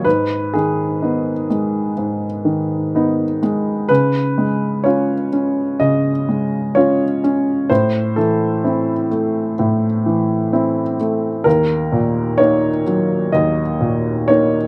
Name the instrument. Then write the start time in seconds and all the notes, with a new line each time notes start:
upright piano
0.05 G#2 B4
0.54 D#3 G#4
1.02 B3 D#4
1.50 G#3
1.98 G#2
2.45 D#3
2.95 B3 D#4
3.43 G#3
3.89 C#3 B4
4.38 G#3
4.84 C#4 F4 C#5
5.33 C#4
5.80 C#3 D#5
6.29 G#3
6.75 C#4 F4 C#5
7.24 C#4
7.70 A2 C5
8.16 E3 A4
8.64 C4 E4
9.11 A3
9.59 A2
10.06 E3
10.53 C4 E4
11.00 A3
11.44 D#2 A#4
11.92 A#2
12.38 A#3 D#4 C#5
12.87 F#3
13.32 D#2 D#5
13.81 A#2
14.28 A#3 D#4 C#5